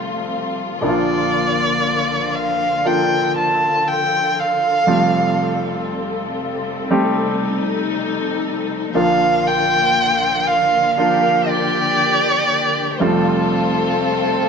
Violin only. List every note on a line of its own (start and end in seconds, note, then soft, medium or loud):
0.83 2.37 D5 medium
2.36 2.88 F5 medium
2.87 3.36 G5 medium
3.37 3.89 A5 medium
3.88 4.41 G5 medium
4.39 5.91 F5 medium
8.96 9.49 F5 medium
9.47 10.48 G5 medium
10.47 10.97 F5 medium
10.98 11.50 F5 medium
11.49 13.03 D5 medium
13.02 14.49 A4 medium